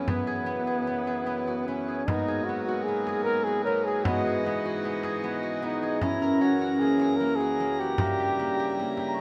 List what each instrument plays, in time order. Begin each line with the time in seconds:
Already playing: harmonium F#2 E3 B3, flugelhorn C#4, harp F#4 G#4
0.08 harp B3, flugelhorn B3, frame drum
0.27 harp G#4
0.46 harp B3
0.67 harp G#4, frame drum
0.87 harp B3, frame drum
1.07 harp G#4
1.26 harp B3, frame drum
1.47 harp F#4, frame drum
1.67 harp B3, flugelhorn C#4
1.88 harp G#4
2.06 harmonium G#2 F#3 A#3 B3, harp B3, flugelhorn D#4, frame drum
2.14 celesta F#5
2.28 harp G#4, frame drum
2.44 flugelhorn F#4
2.49 harp B3
2.64 flugelhorn F#4
2.68 harp F#4
2.83 flugelhorn G#4
2.88 harp B3
3.07 harp G#4, frame drum
3.23 harp B3, flugelhorn A#4
3.44 harp F#4, flugelhorn G#4
3.64 harp B3, flugelhorn A#4, celesta C#5
3.84 flugelhorn G#4, harp G#4
4.04 harmonium G#2 E3 G#3 D#4 F#4, harp B3, flugelhorn F#4, frame drum
4.26 harp G#4, frame drum
4.46 harp B3
4.65 harp F#4
4.85 harp B3
5.03 harp G#4, frame drum
5.24 harp B3
5.43 harp F#4
5.62 harp B3, flugelhorn D#4
5.83 harp G#4
6.00 harmonium F#2 E3 A#5, harp C#4, flugelhorn E4, frame drum
6.21 harp A#4, frame drum
6.41 harp C#4, flugelhorn F#4
6.61 harp F#4
6.80 harp A#3, flugelhorn G#4
7.00 harp F#4, frame drum
7.17 harp A#3, flugelhorn A#4
7.36 flugelhorn G#4
7.40 harp F#4
7.60 harp A#3
7.79 harp F#4, flugelhorn G4
7.98 harmonium G2 C#3 E4, harp A#3, frame drum
8.19 harp G4, celesta G5
8.39 harp A#3
8.59 harp G4, frame drum
8.79 harp A#3
8.97 harp G4, frame drum
9.09 celesta A#5
9.14 celesta C#6